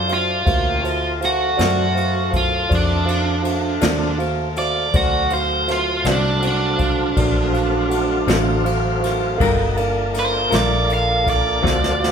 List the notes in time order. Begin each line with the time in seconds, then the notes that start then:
Already playing: F#2 C4 D4 F4 A4 C5
0.08 F#4 C5 F5, ride
0.13 F4
0.45 D2 A#3 C#4 F4 F#4 G4 C5 F5, kick, ride
0.81 A3 C4 F#4 A4 C5 F5, ride
1.21 F#4 C5 F5, snare, ride
1.25 F#4
1.57 F#2 D3 F#3 C4 F4 F#4 C5 D5, snare, ride
1.95 F#4 C5 F5, ride
2.30 F#4 C5 F5, kick, ride
2.36 F4
2.69 F2 F#4 C5 D5, kick, ride
2.75 D4
3.05 F#4 C5 F5, ride
3.42 F#4 C5 F5, ride
3.81 D#2 D3 F#3 C4 F4 F#4 C5 D5, snare, ride
4.18 F#4 C5 F5, ride
4.56 F#4 C5 D5 F5, ride
4.94 D2 F#3 A3 C4 F#4 C5 D5 F5, kick, ride
5.30 F#4 C5 F5, ride
5.68 F4 F#4 C5 F5, snare, ride
6.04 C2 D3 F#3 C4 F4 F#4 C5 D5, snare, ride
6.11 D4
6.42 F#4 C5 F#5, ride
6.47 D4
6.77 F#4 C5 F5, kick, ride
7.16 A#1 F#4 C5 D5, kick, ride
7.53 F#4 C5 F5, ride
7.89 F#4 C5 F#5, ride
8.27 A1 D3 F#3 C4 F4 F#4 C5 F5, snare, ride
8.65 F#4 C5 F5, ride
9.00 F#4 C5 F5, ride
9.05 snare
9.37 G1 G3 B3 D4 D#4 F#4 A4 A#4 F5, kick, ride
9.41 F4
9.76 A#3 D4 F4 A4 A#4 F5, ride
10.13 A4 A#4 F5, snare, ride
10.19 C5
10.50 A#1 G3 D4 F4 A4 A#4 F5, snare, ride
10.55 D5
10.88 A4 A#4 F5, ride
10.93 F5
11.24 A4 A#4 F5, kick, ride
11.30 D5
11.62 D2 D3 F#3 C4 F4 F#4 A4 C5 F5, kick
11.67 snare
11.84 snare
12.00 F#4 C5 F5
12.04 snare